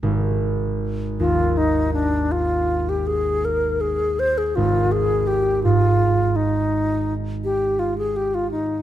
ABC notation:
X:1
M:12/8
L:1/16
Q:3/8=54
K:Cm
V:1 name="Alto flute"
z6 F2 E2 D2 F3 G A2 B2 A2 c A | F2 A2 G2 F4 E6 G2 F A G F E2 |]
V:2 name="Harp" clef=bass
[A,,,A,]6 E,,16- E,,2 | A,,,6 A,,16- A,,2 |]